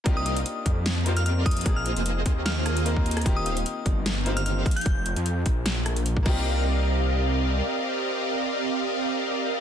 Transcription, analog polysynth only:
X:1
M:4/4
L:1/16
Q:"Swing 16ths" 1/4=150
K:Cm
V:1 name="Analog polysynth"
[CGBdef]2 [CGBdef] z6 z [CGBdef]4 [CGBde]2 | z2 [B,FAce]8 [B,FAce]3 [B,FAce] [B,FAce] z | [E,EGcf]2 [E,EGcf] z6 z [E,EGcf]4 A2 | z12 z2 [CGBdef]2- |
[CGBdef]16- | [CGBdef]16 |]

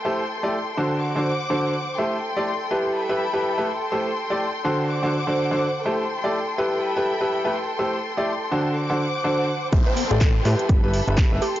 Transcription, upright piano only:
X:1
M:4/4
L:1/16
Q:"Swing 16ths" 1/4=124
K:Ador
V:1 name="Upright piano"
[A,EGAc] z2 [A,EGAd] z2 [D,DFAc]3 [D,DFAc] z2 [D,DFAc]2 z2 | [A,EGAc] z2 [A,EGAd] z2 [G,EGAB]3 [G,EGAB] z [G,EGAB]2 [A,EGAB] z2 | [A,EGAc] z2 [A,EGAd] z2 [D,DFAc]3 [D,DFAc] z [D,DFAc]2 [D,DFAc] z2 | [A,EGAc] z2 [A,EGAd] z2 [G,EGAB]3 [G,EGAB] z [G,EGAB]2 [A,EGAB] z2 |
[A,EGAc] z2 [A,EGAd] z2 [D,DFAc]3 [D,DFAc] z2 [D,DFAc]2 z2 | [A,EGAc] z2 [A,EGAd] z2 [G,EGAB]3 [G,EGAB] z [G,EGAB]2 [A,EGAB] z2 |]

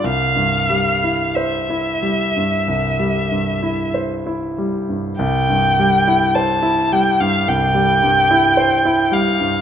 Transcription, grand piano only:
X:1
M:4/4
L:1/16
Q:1/4=51
K:C
V:1 name="Grand piano" clef=bass
C,, G,, G, E c E G, G,, C,, G, G,, E c E G, G,, | C,, G,, G, E c E G, G,, C,, G, G,, E c E G, G,, |]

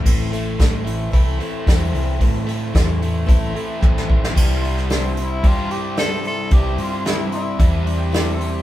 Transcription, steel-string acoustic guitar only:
X:1
M:4/4
L:1/8
Q:1/4=112
K:C
V:1 name="Steel-string acoustic guitar"
[A,,E,A,CEA] [A,CEA] [A,CEA] [A,CEA] [A,,E,A,CEA] [A,CEA] [A,CEA] [A,CEA] | [A,,E,A,CEA] [A,CEA] [A,CEA] [A,CEA] [A,,E,A,CEA] [A,CEA] [A,CEA] [A,CEA] | [C,E,G,DEc] [G,DEc] [C,E,G,DEc] [G,DEc] [G,DEc] [G,DEc] [C,E,G,DEc] [G,DEc] | [C,E,G,DEc] [G,DEc] [C,E,G,DEc] [G,DEc] [G,DEc] [G,DEc] [C,E,G,DEc] [G,DEc] |]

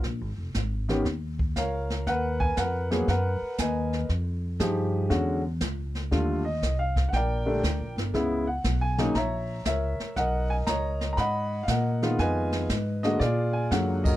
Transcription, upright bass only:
X:1
M:4/4
L:1/8
Q:"Swing" 1/4=118
K:Ebm
V:1 name="Upright bass" clef=bass
(3B,,, A,,, F,,, A,,,2 E,,2 D,,2 | E,,2 F,,2 G,, z E,,2 | F,,2 =G,,2 =E,,2 ^C,,2 | E,,2 =C,,2 B,,,2 (3=D,, B,,, =G,,, |
D,,2 C,,2 B,,,2 D,, z | =B,,,2 ^C,,2 A,,2 ^A,,2 | F,,2 A,,2 B,,2 G,,2 |]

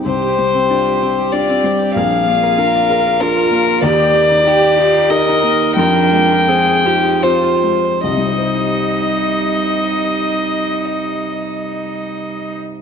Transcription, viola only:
X:1
M:3/4
L:1/8
Q:1/4=89
K:Cm
V:1 name="Viola"
G2 G4 | A2 B2 F2 | G2 G2 B2 | B2 A G F z |
E6- | E6 |]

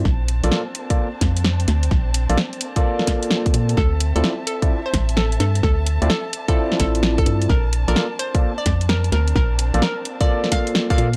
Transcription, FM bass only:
X:1
M:4/4
L:1/16
Q:"Swing 16ths" 1/4=129
K:Bblyd
V:1 name="FM bass" clef=bass
B,,,3 B,,, z6 F,,4 D,,2 | B,,,3 B,,, z8 z2 B,,2 | D,,3 D,, z6 A,,,4 G,,2 | D,,3 D,, z6 A,,,4 G,,2 |
B,,,3 B,,, z6 F,,4 D,,2 | B,,,3 B,,, z8 z2 B,,2 |]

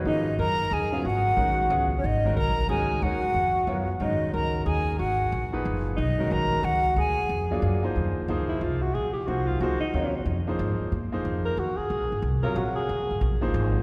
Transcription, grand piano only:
X:1
M:3/4
L:1/8
Q:"Swing" 1/4=182
K:G#dor
V:1 name="Grand piano"
[_E,^E,_A,^A,_D^D_G^GB]2 z3 [C,F,B,EG] | z2 [D,G,CFA]2 [C,F,B,EG] z | z [D,G,CFA] z2 [D,G,CFA]2 | [D,G,CFA] z3 [F,B,EAc] z |
[D,G,CFA]4- [D,G,CFA] z | z3 [A,,E,DGB]3 | z [D,G,CFA]3 z2 | z3 [F,A,=DEG]2 [E,A,^DG^B]- |
[K:Ebdor] [^E,^A,^D^G^B]2 [F,_B,_E_Ac]3 z | z2 [F,B,EAc]2 [F,B,EAc] z | [G,CFBd] z2 [F,B,EAc]3 | z [F,B,EAc]3 z2 |
z3 [C,G,FBd]3 | z3 [F,B,EAc]3 |]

